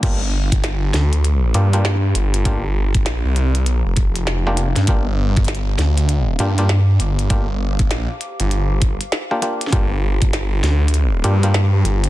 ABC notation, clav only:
X:1
M:4/4
L:1/16
Q:"Swing 16ths" 1/4=99
K:Gm
V:1 name="Clav"
[B,DFG] z8 z [B,DFG] [B,DFG]2 z3 | [B,DFG] z12 [B,DFG]2 z | [B,DFG] z8 z [B,DFG] [B,DFG]2 z3 | [B,DFG] z12 [B,DFG] [B,DFG]2 |
[B,DFG] z8 z [B,DFG] [B,DFG]2 z3 |]